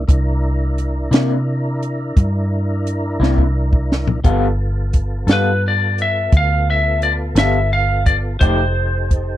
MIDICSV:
0, 0, Header, 1, 6, 480
1, 0, Start_track
1, 0, Tempo, 693642
1, 60, Time_signature, 12, 3, 24, 8
1, 6485, End_track
2, 0, Start_track
2, 0, Title_t, "Lead electric guitar"
2, 0, Program_c, 0, 29
2, 3687, Note_on_c, 0, 71, 87
2, 3896, Note_off_c, 0, 71, 0
2, 3930, Note_on_c, 0, 74, 76
2, 4160, Note_off_c, 0, 74, 0
2, 4165, Note_on_c, 0, 76, 85
2, 4398, Note_off_c, 0, 76, 0
2, 4407, Note_on_c, 0, 77, 98
2, 4617, Note_off_c, 0, 77, 0
2, 4639, Note_on_c, 0, 76, 90
2, 4863, Note_off_c, 0, 76, 0
2, 4866, Note_on_c, 0, 74, 82
2, 4929, Note_off_c, 0, 74, 0
2, 5110, Note_on_c, 0, 76, 87
2, 5346, Note_off_c, 0, 76, 0
2, 5349, Note_on_c, 0, 77, 88
2, 5578, Note_off_c, 0, 77, 0
2, 5580, Note_on_c, 0, 74, 93
2, 5645, Note_off_c, 0, 74, 0
2, 5817, Note_on_c, 0, 72, 72
2, 6485, Note_off_c, 0, 72, 0
2, 6485, End_track
3, 0, Start_track
3, 0, Title_t, "Tonewheel organ"
3, 0, Program_c, 1, 16
3, 52, Note_on_c, 1, 70, 66
3, 53, Note_on_c, 1, 64, 63
3, 54, Note_on_c, 1, 62, 64
3, 2906, Note_off_c, 1, 64, 0
3, 2906, Note_off_c, 1, 70, 0
3, 2907, Note_off_c, 1, 62, 0
3, 2937, Note_on_c, 1, 59, 63
3, 2938, Note_on_c, 1, 69, 55
3, 2940, Note_on_c, 1, 65, 59
3, 5790, Note_off_c, 1, 59, 0
3, 5791, Note_off_c, 1, 69, 0
3, 5792, Note_off_c, 1, 65, 0
3, 5818, Note_on_c, 1, 69, 59
3, 5824, Note_on_c, 1, 63, 62
3, 5825, Note_on_c, 1, 67, 59
3, 6485, Note_off_c, 1, 63, 0
3, 6485, Note_off_c, 1, 67, 0
3, 6485, Note_off_c, 1, 69, 0
3, 6485, End_track
4, 0, Start_track
4, 0, Title_t, "Clean electric guitar"
4, 0, Program_c, 2, 27
4, 770, Note_on_c, 2, 64, 63
4, 772, Note_on_c, 2, 62, 63
4, 778, Note_on_c, 2, 58, 60
4, 785, Note_on_c, 2, 48, 59
4, 918, Note_off_c, 2, 64, 0
4, 919, Note_off_c, 2, 62, 0
4, 922, Note_off_c, 2, 58, 0
4, 925, Note_off_c, 2, 48, 0
4, 2214, Note_on_c, 2, 64, 80
4, 2220, Note_on_c, 2, 62, 65
4, 2224, Note_on_c, 2, 58, 62
4, 2225, Note_on_c, 2, 48, 61
4, 2359, Note_off_c, 2, 64, 0
4, 2362, Note_off_c, 2, 62, 0
4, 2364, Note_off_c, 2, 58, 0
4, 2365, Note_off_c, 2, 48, 0
4, 2934, Note_on_c, 2, 55, 73
4, 2936, Note_on_c, 2, 59, 82
4, 2938, Note_on_c, 2, 65, 84
4, 2946, Note_on_c, 2, 69, 83
4, 3079, Note_off_c, 2, 55, 0
4, 3081, Note_off_c, 2, 59, 0
4, 3081, Note_off_c, 2, 65, 0
4, 3085, Note_off_c, 2, 69, 0
4, 3648, Note_on_c, 2, 69, 63
4, 3657, Note_on_c, 2, 65, 58
4, 3662, Note_on_c, 2, 59, 54
4, 3666, Note_on_c, 2, 55, 49
4, 3796, Note_off_c, 2, 69, 0
4, 3801, Note_off_c, 2, 65, 0
4, 3804, Note_off_c, 2, 59, 0
4, 3805, Note_off_c, 2, 55, 0
4, 5088, Note_on_c, 2, 69, 63
4, 5095, Note_on_c, 2, 65, 58
4, 5102, Note_on_c, 2, 59, 58
4, 5107, Note_on_c, 2, 55, 53
4, 5237, Note_off_c, 2, 69, 0
4, 5240, Note_off_c, 2, 65, 0
4, 5244, Note_off_c, 2, 59, 0
4, 5246, Note_off_c, 2, 55, 0
4, 5809, Note_on_c, 2, 53, 63
4, 5816, Note_on_c, 2, 57, 73
4, 5818, Note_on_c, 2, 63, 76
4, 5825, Note_on_c, 2, 67, 82
4, 5958, Note_off_c, 2, 53, 0
4, 5961, Note_off_c, 2, 57, 0
4, 5962, Note_off_c, 2, 63, 0
4, 5966, Note_off_c, 2, 67, 0
4, 6485, End_track
5, 0, Start_track
5, 0, Title_t, "Fingered electric bass"
5, 0, Program_c, 3, 33
5, 58, Note_on_c, 3, 36, 74
5, 750, Note_off_c, 3, 36, 0
5, 768, Note_on_c, 3, 48, 77
5, 1464, Note_off_c, 3, 48, 0
5, 1502, Note_on_c, 3, 43, 75
5, 2191, Note_off_c, 3, 43, 0
5, 2212, Note_on_c, 3, 36, 86
5, 2906, Note_off_c, 3, 36, 0
5, 2935, Note_on_c, 3, 31, 83
5, 3628, Note_off_c, 3, 31, 0
5, 3646, Note_on_c, 3, 43, 88
5, 4344, Note_off_c, 3, 43, 0
5, 4377, Note_on_c, 3, 38, 87
5, 5070, Note_off_c, 3, 38, 0
5, 5088, Note_on_c, 3, 31, 93
5, 5785, Note_off_c, 3, 31, 0
5, 5816, Note_on_c, 3, 29, 74
5, 6485, Note_off_c, 3, 29, 0
5, 6485, End_track
6, 0, Start_track
6, 0, Title_t, "Drums"
6, 59, Note_on_c, 9, 36, 99
6, 61, Note_on_c, 9, 42, 79
6, 128, Note_off_c, 9, 36, 0
6, 131, Note_off_c, 9, 42, 0
6, 540, Note_on_c, 9, 42, 58
6, 610, Note_off_c, 9, 42, 0
6, 779, Note_on_c, 9, 42, 84
6, 790, Note_on_c, 9, 38, 105
6, 848, Note_off_c, 9, 42, 0
6, 860, Note_off_c, 9, 38, 0
6, 1263, Note_on_c, 9, 42, 55
6, 1332, Note_off_c, 9, 42, 0
6, 1499, Note_on_c, 9, 36, 88
6, 1500, Note_on_c, 9, 42, 71
6, 1568, Note_off_c, 9, 36, 0
6, 1569, Note_off_c, 9, 42, 0
6, 1984, Note_on_c, 9, 42, 56
6, 2053, Note_off_c, 9, 42, 0
6, 2236, Note_on_c, 9, 38, 60
6, 2305, Note_off_c, 9, 38, 0
6, 2339, Note_on_c, 9, 36, 56
6, 2409, Note_off_c, 9, 36, 0
6, 2579, Note_on_c, 9, 36, 71
6, 2648, Note_off_c, 9, 36, 0
6, 2713, Note_on_c, 9, 38, 85
6, 2782, Note_off_c, 9, 38, 0
6, 2819, Note_on_c, 9, 43, 75
6, 2889, Note_off_c, 9, 43, 0
6, 2937, Note_on_c, 9, 36, 98
6, 2937, Note_on_c, 9, 42, 68
6, 3006, Note_off_c, 9, 36, 0
6, 3006, Note_off_c, 9, 42, 0
6, 3413, Note_on_c, 9, 42, 56
6, 3417, Note_on_c, 9, 36, 66
6, 3483, Note_off_c, 9, 42, 0
6, 3486, Note_off_c, 9, 36, 0
6, 3652, Note_on_c, 9, 42, 79
6, 3663, Note_on_c, 9, 38, 112
6, 3722, Note_off_c, 9, 42, 0
6, 3733, Note_off_c, 9, 38, 0
6, 4139, Note_on_c, 9, 42, 52
6, 4209, Note_off_c, 9, 42, 0
6, 4376, Note_on_c, 9, 42, 69
6, 4377, Note_on_c, 9, 36, 96
6, 4445, Note_off_c, 9, 42, 0
6, 4446, Note_off_c, 9, 36, 0
6, 4857, Note_on_c, 9, 42, 59
6, 4926, Note_off_c, 9, 42, 0
6, 5093, Note_on_c, 9, 42, 96
6, 5105, Note_on_c, 9, 38, 108
6, 5163, Note_off_c, 9, 42, 0
6, 5174, Note_off_c, 9, 38, 0
6, 5578, Note_on_c, 9, 42, 57
6, 5579, Note_on_c, 9, 36, 71
6, 5647, Note_off_c, 9, 42, 0
6, 5649, Note_off_c, 9, 36, 0
6, 5819, Note_on_c, 9, 36, 100
6, 5819, Note_on_c, 9, 42, 70
6, 5888, Note_off_c, 9, 42, 0
6, 5889, Note_off_c, 9, 36, 0
6, 6303, Note_on_c, 9, 36, 61
6, 6303, Note_on_c, 9, 42, 54
6, 6372, Note_off_c, 9, 36, 0
6, 6373, Note_off_c, 9, 42, 0
6, 6485, End_track
0, 0, End_of_file